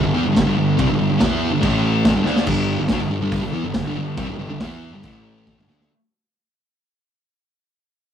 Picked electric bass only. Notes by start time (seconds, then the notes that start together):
0.03 G1
0.15 E2
0.26 G1
0.37 G1
0.46 G1
0.58 G1
0.79 C2
0.90 G1
1.01 G1
1.11 G1
1.21 E2
1.50 G1
1.63 A1
2.14 G1
2.24 D2
2.47 G1
2.79 G1
2.90 D2
3.00 G1
3.09 G1
3.20 G1
3.42 G1
3.52 E2
3.63 G1
3.75 G1
3.84 G1
3.95 G1
4.18 C2
4.28 G1
4.37 G1
4.49 G1
4.61 E2
4.91 G1
5.04 A1
5.56 G1
5.67 D2